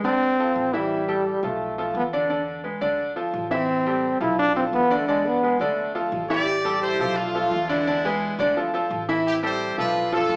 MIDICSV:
0, 0, Header, 1, 5, 480
1, 0, Start_track
1, 0, Key_signature, 0, "minor"
1, 0, Tempo, 347625
1, 1252, Time_signature, 4, 2, 24, 8
1, 14308, End_track
2, 0, Start_track
2, 0, Title_t, "Grand piano"
2, 0, Program_c, 0, 0
2, 58, Note_on_c, 0, 50, 74
2, 62, Note_on_c, 0, 62, 85
2, 67, Note_on_c, 0, 74, 78
2, 449, Note_off_c, 0, 50, 0
2, 452, Note_off_c, 0, 62, 0
2, 454, Note_off_c, 0, 74, 0
2, 544, Note_on_c, 0, 53, 69
2, 545, Note_on_c, 0, 65, 77
2, 552, Note_on_c, 0, 69, 81
2, 933, Note_off_c, 0, 53, 0
2, 933, Note_off_c, 0, 65, 0
2, 937, Note_off_c, 0, 69, 0
2, 1014, Note_on_c, 0, 52, 79
2, 1022, Note_on_c, 0, 64, 81
2, 1025, Note_on_c, 0, 76, 79
2, 1407, Note_off_c, 0, 52, 0
2, 1412, Note_off_c, 0, 64, 0
2, 1413, Note_off_c, 0, 76, 0
2, 1490, Note_on_c, 0, 55, 68
2, 1497, Note_on_c, 0, 67, 75
2, 1499, Note_on_c, 0, 69, 75
2, 1885, Note_off_c, 0, 55, 0
2, 1888, Note_off_c, 0, 67, 0
2, 1890, Note_off_c, 0, 69, 0
2, 1981, Note_on_c, 0, 53, 70
2, 1983, Note_on_c, 0, 65, 71
2, 1988, Note_on_c, 0, 69, 72
2, 2371, Note_off_c, 0, 53, 0
2, 2372, Note_off_c, 0, 65, 0
2, 2375, Note_off_c, 0, 69, 0
2, 2460, Note_on_c, 0, 53, 74
2, 2460, Note_on_c, 0, 65, 77
2, 2465, Note_on_c, 0, 69, 73
2, 2850, Note_off_c, 0, 53, 0
2, 2851, Note_off_c, 0, 65, 0
2, 2853, Note_off_c, 0, 69, 0
2, 2941, Note_on_c, 0, 50, 81
2, 2943, Note_on_c, 0, 62, 87
2, 2948, Note_on_c, 0, 74, 82
2, 3134, Note_off_c, 0, 50, 0
2, 3136, Note_off_c, 0, 62, 0
2, 3138, Note_off_c, 0, 74, 0
2, 3171, Note_on_c, 0, 50, 82
2, 3173, Note_on_c, 0, 62, 71
2, 3177, Note_on_c, 0, 74, 71
2, 3565, Note_off_c, 0, 50, 0
2, 3567, Note_off_c, 0, 62, 0
2, 3569, Note_off_c, 0, 74, 0
2, 3641, Note_on_c, 0, 56, 66
2, 3645, Note_on_c, 0, 68, 58
2, 3649, Note_on_c, 0, 71, 60
2, 3842, Note_off_c, 0, 56, 0
2, 3845, Note_off_c, 0, 68, 0
2, 3847, Note_off_c, 0, 71, 0
2, 3879, Note_on_c, 0, 50, 81
2, 3886, Note_on_c, 0, 74, 89
2, 3887, Note_on_c, 0, 62, 83
2, 4278, Note_off_c, 0, 50, 0
2, 4282, Note_off_c, 0, 74, 0
2, 4283, Note_off_c, 0, 62, 0
2, 4363, Note_on_c, 0, 53, 79
2, 4367, Note_on_c, 0, 65, 74
2, 4369, Note_on_c, 0, 69, 76
2, 4761, Note_off_c, 0, 53, 0
2, 4763, Note_off_c, 0, 65, 0
2, 4764, Note_off_c, 0, 69, 0
2, 4845, Note_on_c, 0, 52, 80
2, 4849, Note_on_c, 0, 76, 88
2, 4850, Note_on_c, 0, 64, 92
2, 5242, Note_off_c, 0, 52, 0
2, 5244, Note_off_c, 0, 76, 0
2, 5245, Note_off_c, 0, 64, 0
2, 5334, Note_on_c, 0, 55, 76
2, 5335, Note_on_c, 0, 67, 79
2, 5342, Note_on_c, 0, 69, 71
2, 5727, Note_off_c, 0, 55, 0
2, 5728, Note_off_c, 0, 67, 0
2, 5732, Note_off_c, 0, 69, 0
2, 5806, Note_on_c, 0, 53, 79
2, 5807, Note_on_c, 0, 65, 78
2, 5811, Note_on_c, 0, 69, 67
2, 6203, Note_off_c, 0, 53, 0
2, 6204, Note_off_c, 0, 65, 0
2, 6205, Note_off_c, 0, 69, 0
2, 6288, Note_on_c, 0, 53, 74
2, 6294, Note_on_c, 0, 65, 83
2, 6296, Note_on_c, 0, 69, 76
2, 6684, Note_off_c, 0, 53, 0
2, 6688, Note_off_c, 0, 65, 0
2, 6689, Note_off_c, 0, 69, 0
2, 6771, Note_on_c, 0, 50, 92
2, 6775, Note_on_c, 0, 62, 88
2, 6783, Note_on_c, 0, 74, 89
2, 6969, Note_off_c, 0, 50, 0
2, 6971, Note_off_c, 0, 62, 0
2, 6976, Note_off_c, 0, 74, 0
2, 7013, Note_on_c, 0, 50, 84
2, 7018, Note_on_c, 0, 62, 84
2, 7020, Note_on_c, 0, 74, 86
2, 7407, Note_off_c, 0, 50, 0
2, 7410, Note_off_c, 0, 62, 0
2, 7411, Note_off_c, 0, 74, 0
2, 7499, Note_on_c, 0, 56, 68
2, 7506, Note_on_c, 0, 68, 64
2, 7509, Note_on_c, 0, 71, 65
2, 7694, Note_off_c, 0, 56, 0
2, 7698, Note_off_c, 0, 68, 0
2, 7700, Note_off_c, 0, 71, 0
2, 7740, Note_on_c, 0, 50, 91
2, 7742, Note_on_c, 0, 62, 77
2, 7746, Note_on_c, 0, 74, 84
2, 8131, Note_off_c, 0, 50, 0
2, 8133, Note_off_c, 0, 62, 0
2, 8135, Note_off_c, 0, 74, 0
2, 8214, Note_on_c, 0, 53, 83
2, 8216, Note_on_c, 0, 65, 82
2, 8219, Note_on_c, 0, 69, 80
2, 8608, Note_off_c, 0, 53, 0
2, 8609, Note_off_c, 0, 65, 0
2, 8611, Note_off_c, 0, 69, 0
2, 8700, Note_on_c, 0, 52, 92
2, 8703, Note_on_c, 0, 64, 82
2, 8711, Note_on_c, 0, 76, 89
2, 8894, Note_off_c, 0, 52, 0
2, 8896, Note_off_c, 0, 64, 0
2, 8901, Note_off_c, 0, 76, 0
2, 9179, Note_on_c, 0, 55, 85
2, 9182, Note_on_c, 0, 67, 86
2, 9185, Note_on_c, 0, 69, 87
2, 9570, Note_off_c, 0, 55, 0
2, 9573, Note_off_c, 0, 67, 0
2, 9574, Note_off_c, 0, 69, 0
2, 9664, Note_on_c, 0, 53, 81
2, 9666, Note_on_c, 0, 65, 79
2, 9673, Note_on_c, 0, 69, 77
2, 10054, Note_off_c, 0, 53, 0
2, 10054, Note_off_c, 0, 65, 0
2, 10059, Note_off_c, 0, 69, 0
2, 10145, Note_on_c, 0, 53, 81
2, 10151, Note_on_c, 0, 65, 87
2, 10153, Note_on_c, 0, 69, 80
2, 10534, Note_off_c, 0, 53, 0
2, 10537, Note_off_c, 0, 65, 0
2, 10539, Note_off_c, 0, 69, 0
2, 10622, Note_on_c, 0, 62, 95
2, 10623, Note_on_c, 0, 50, 95
2, 10630, Note_on_c, 0, 74, 88
2, 10816, Note_off_c, 0, 50, 0
2, 10816, Note_off_c, 0, 62, 0
2, 10820, Note_off_c, 0, 74, 0
2, 10867, Note_on_c, 0, 50, 86
2, 10870, Note_on_c, 0, 62, 89
2, 10873, Note_on_c, 0, 74, 88
2, 11059, Note_off_c, 0, 50, 0
2, 11060, Note_off_c, 0, 62, 0
2, 11062, Note_off_c, 0, 74, 0
2, 11115, Note_on_c, 0, 56, 86
2, 11117, Note_on_c, 0, 68, 83
2, 11119, Note_on_c, 0, 71, 81
2, 11500, Note_off_c, 0, 56, 0
2, 11501, Note_off_c, 0, 68, 0
2, 11503, Note_off_c, 0, 71, 0
2, 11590, Note_on_c, 0, 50, 92
2, 11592, Note_on_c, 0, 62, 88
2, 11598, Note_on_c, 0, 74, 91
2, 11780, Note_off_c, 0, 50, 0
2, 11781, Note_off_c, 0, 62, 0
2, 11785, Note_off_c, 0, 74, 0
2, 11827, Note_on_c, 0, 53, 76
2, 11833, Note_on_c, 0, 65, 77
2, 11833, Note_on_c, 0, 69, 74
2, 12018, Note_off_c, 0, 53, 0
2, 12022, Note_off_c, 0, 65, 0
2, 12022, Note_off_c, 0, 69, 0
2, 12063, Note_on_c, 0, 53, 85
2, 12068, Note_on_c, 0, 65, 81
2, 12075, Note_on_c, 0, 69, 83
2, 12453, Note_off_c, 0, 53, 0
2, 12456, Note_off_c, 0, 65, 0
2, 12460, Note_off_c, 0, 69, 0
2, 12547, Note_on_c, 0, 52, 87
2, 12550, Note_on_c, 0, 64, 102
2, 12553, Note_on_c, 0, 76, 92
2, 12936, Note_off_c, 0, 52, 0
2, 12938, Note_off_c, 0, 64, 0
2, 12939, Note_off_c, 0, 76, 0
2, 13019, Note_on_c, 0, 55, 81
2, 13023, Note_on_c, 0, 67, 85
2, 13028, Note_on_c, 0, 69, 83
2, 13411, Note_off_c, 0, 55, 0
2, 13414, Note_off_c, 0, 67, 0
2, 13417, Note_off_c, 0, 69, 0
2, 13501, Note_on_c, 0, 53, 84
2, 13506, Note_on_c, 0, 65, 85
2, 13511, Note_on_c, 0, 69, 84
2, 13893, Note_off_c, 0, 53, 0
2, 13896, Note_off_c, 0, 65, 0
2, 13899, Note_off_c, 0, 69, 0
2, 13978, Note_on_c, 0, 53, 90
2, 13981, Note_on_c, 0, 65, 92
2, 13988, Note_on_c, 0, 69, 90
2, 14308, Note_off_c, 0, 53, 0
2, 14308, Note_off_c, 0, 65, 0
2, 14308, Note_off_c, 0, 69, 0
2, 14308, End_track
3, 0, Start_track
3, 0, Title_t, "Horn section"
3, 0, Program_c, 1, 61
3, 8691, Note_on_c, 1, 74, 109
3, 8703, Note_on_c, 1, 67, 85
3, 9362, Note_off_c, 1, 74, 0
3, 9415, Note_on_c, 1, 72, 104
3, 9416, Note_off_c, 1, 67, 0
3, 9433, Note_on_c, 1, 64, 83
3, 9433, Note_on_c, 1, 67, 85
3, 9870, Note_off_c, 1, 64, 0
3, 9870, Note_off_c, 1, 67, 0
3, 9891, Note_on_c, 1, 65, 100
3, 9895, Note_off_c, 1, 72, 0
3, 9908, Note_on_c, 1, 57, 77
3, 9913, Note_on_c, 1, 62, 73
3, 10602, Note_on_c, 1, 64, 89
3, 10613, Note_off_c, 1, 65, 0
3, 10627, Note_on_c, 1, 56, 69
3, 10628, Note_on_c, 1, 59, 65
3, 10806, Note_off_c, 1, 57, 0
3, 10808, Note_off_c, 1, 62, 0
3, 11766, Note_off_c, 1, 56, 0
3, 12006, Note_off_c, 1, 59, 0
3, 12048, Note_off_c, 1, 64, 0
3, 12796, Note_on_c, 1, 67, 93
3, 12799, Note_on_c, 1, 60, 59
3, 12802, Note_on_c, 1, 64, 69
3, 12900, Note_off_c, 1, 67, 0
3, 13025, Note_off_c, 1, 64, 0
3, 13038, Note_on_c, 1, 67, 80
3, 13038, Note_on_c, 1, 72, 104
3, 13041, Note_on_c, 1, 64, 78
3, 13474, Note_off_c, 1, 72, 0
3, 13514, Note_on_c, 1, 62, 76
3, 13514, Note_on_c, 1, 71, 100
3, 13519, Note_on_c, 1, 65, 78
3, 13693, Note_off_c, 1, 60, 0
3, 13698, Note_off_c, 1, 67, 0
3, 13700, Note_off_c, 1, 64, 0
3, 13953, Note_off_c, 1, 71, 0
3, 13975, Note_off_c, 1, 65, 0
3, 13976, Note_off_c, 1, 62, 0
3, 13992, Note_on_c, 1, 65, 80
3, 13993, Note_on_c, 1, 62, 78
3, 13999, Note_on_c, 1, 69, 99
3, 14308, Note_off_c, 1, 62, 0
3, 14308, Note_off_c, 1, 65, 0
3, 14308, Note_off_c, 1, 69, 0
3, 14308, End_track
4, 0, Start_track
4, 0, Title_t, "Trombone"
4, 0, Program_c, 2, 57
4, 56, Note_on_c, 2, 60, 106
4, 1017, Note_on_c, 2, 55, 94
4, 1038, Note_off_c, 2, 60, 0
4, 1981, Note_on_c, 2, 57, 92
4, 2002, Note_off_c, 2, 55, 0
4, 2697, Note_off_c, 2, 57, 0
4, 2707, Note_on_c, 2, 59, 93
4, 2812, Note_off_c, 2, 59, 0
4, 2952, Note_on_c, 2, 62, 81
4, 3389, Note_off_c, 2, 62, 0
4, 4849, Note_on_c, 2, 60, 101
4, 5756, Note_off_c, 2, 60, 0
4, 5810, Note_on_c, 2, 64, 96
4, 6035, Note_off_c, 2, 64, 0
4, 6055, Note_on_c, 2, 62, 118
4, 6278, Note_off_c, 2, 62, 0
4, 6300, Note_on_c, 2, 60, 86
4, 6407, Note_off_c, 2, 60, 0
4, 6537, Note_on_c, 2, 59, 107
4, 6856, Note_on_c, 2, 57, 82
4, 6877, Note_off_c, 2, 59, 0
4, 7015, Note_off_c, 2, 57, 0
4, 7021, Note_on_c, 2, 56, 92
4, 7260, Note_on_c, 2, 59, 98
4, 7281, Note_off_c, 2, 56, 0
4, 7737, Note_off_c, 2, 59, 0
4, 7748, Note_on_c, 2, 57, 86
4, 8646, Note_off_c, 2, 57, 0
4, 14308, End_track
5, 0, Start_track
5, 0, Title_t, "Upright bass"
5, 0, Program_c, 3, 32
5, 50, Note_on_c, 3, 38, 82
5, 721, Note_off_c, 3, 38, 0
5, 766, Note_on_c, 3, 33, 89
5, 1890, Note_off_c, 3, 33, 0
5, 1970, Note_on_c, 3, 35, 92
5, 2641, Note_off_c, 3, 35, 0
5, 2686, Note_on_c, 3, 40, 92
5, 3810, Note_off_c, 3, 40, 0
5, 3893, Note_on_c, 3, 38, 88
5, 4562, Note_off_c, 3, 38, 0
5, 4605, Note_on_c, 3, 33, 97
5, 5730, Note_off_c, 3, 33, 0
5, 5807, Note_on_c, 3, 35, 91
5, 6480, Note_off_c, 3, 35, 0
5, 6530, Note_on_c, 3, 40, 96
5, 7653, Note_off_c, 3, 40, 0
5, 7726, Note_on_c, 3, 38, 92
5, 8400, Note_off_c, 3, 38, 0
5, 8449, Note_on_c, 3, 33, 99
5, 9572, Note_off_c, 3, 33, 0
5, 9655, Note_on_c, 3, 35, 93
5, 10324, Note_off_c, 3, 35, 0
5, 10372, Note_on_c, 3, 40, 99
5, 11493, Note_off_c, 3, 40, 0
5, 11580, Note_on_c, 3, 38, 101
5, 12247, Note_off_c, 3, 38, 0
5, 12296, Note_on_c, 3, 33, 95
5, 13417, Note_off_c, 3, 33, 0
5, 13497, Note_on_c, 3, 35, 86
5, 14167, Note_off_c, 3, 35, 0
5, 14213, Note_on_c, 3, 40, 98
5, 14308, Note_off_c, 3, 40, 0
5, 14308, End_track
0, 0, End_of_file